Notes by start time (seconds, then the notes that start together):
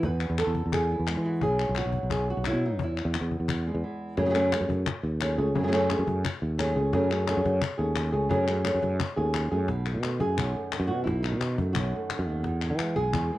0.03 E2 B4, cajon bass, cajon slap
0.21 clap
0.30 E2
0.38 A4, cajon slap, clap
0.47 E2
0.55 cajon bass
0.66 E2
0.72 G#4, cajon bass, clap
0.91 B3 E4
0.99 E2
1.07 G#3, cajon slap, clap
1.17 E3
1.26 F#4
1.41 B1 B2 F#3 B3 G#4, cajon bass
1.60 clap
1.69 B1
1.75 F#4, cajon slap, clap
1.86 B1
1.92 cajon bass
2.03 B1
2.10 G#4, cajon bass, clap
2.30 F#4
2.37 B1
2.44 F#3 E4, cajon slap, clap
2.53 B2
2.63 D#4, cajon slap
2.79 E2, cajon bass
2.83 E4
2.97 clap
3.05 E2
3.14 B3, cajon slap, clap
3.21 E2
3.31 cajon bass
3.40 E2
3.48 cajon bass, clap
3.67 G#3 B3
3.75 E2
3.84 E3
4.17 F#2 C#3 F#3 A3 C#4 G#4, cajon bass, cajon slap
4.22 F#3 C#4
4.26 A3 C#4 G#4
4.30 F#3 A3 C#4 G#4
4.35 C#3 F#3 A3 C#4 G#4, clap
4.52 A3 C#4 G#4, cajon slap, clap
4.61 F#2
4.69 F#2, cajon bass
4.87 muted nylon-string guitar stroke, cajon bass, clap
5.03 D#2
5.21 F#3 A3 C#4 G#4, cajon slap, clap
5.38 C#2 A3 C#4 G#4
5.55 F#2 C#3 F#3 A3 C#4 G#4, cajon bass
5.59 F#3 A3 C#4 G#4
5.64 F#3 A3 C#4 G#4
5.68 C#3 A3 C#4 G#4
5.72 F#3 A3 C#4 G#4, clap
5.90 A3 C#4 G#4, cajon slap, clap
5.99 F#2
6.07 F#2, cajon bass
6.24 muted nylon-string guitar stroke, cajon bass, clap
6.42 D#2
6.58 F#3 A3 C#4 G#4, cajon slap, clap
6.75 C#2 A3 C#4 G#4
6.92 F#2 C#3 F#3 A3 C#4 G#4, cajon bass, cajon slap
7.10 A3 C#4 G#4, clap
7.27 F#3 A3 C#4 G#4, cajon slap, clap
7.37 F#2
7.45 F#2, cajon bass
7.61 muted nylon-string guitar stroke, cajon bass, clap
7.78 D#2 A3 C#4 G#4
7.96 cajon slap, clap
8.12 C#2 A3 C#4 G#4
8.29 F#2 C#3 F#3 A3 C#4 G#4, cajon bass
8.47 A3 C#4 G#4, clap
8.64 F#3 A3 C#4 G#4, cajon slap, clap
8.74 F#2
8.83 F#2, cajon bass
8.99 muted nylon-string guitar stroke, cajon bass, clap
9.16 D#2 A3 C#4 G#4
9.34 cajon slap, clap
9.51 F#2 A3 C#4 G#4
9.68 B1 B2, cajon bass, cajon slap
9.86 D#3, clap
9.94 B2
10.03 A3, cajon slap, clap
10.20 F#2 G#4, cajon bass
10.37 B1 F#2, cajon bass, clap
10.56 A3
10.72 D#3, cajon slap, clap
10.80 F#2
10.87 B2 F#4
11.04 B1 B2 E4, cajon bass, cajon slap
11.22 D#3 D#4, clap
11.32 B2
11.41 cajon slap, clap
11.58 F#2 A3, cajon bass
11.73 B1 F#2 F#4, cajon bass, clap
11.96 A3
12.10 D#3, cajon slap, clap
12.19 F#2
12.27 D#2 B3
12.44 E2, cajon bass, cajon slap
12.62 E3, clap
12.70 E3
12.79 G#3, cajon slap, clap
12.96 B1 G#4, cajon bass
13.14 E2 B2, cajon bass, clap
13.33 G#3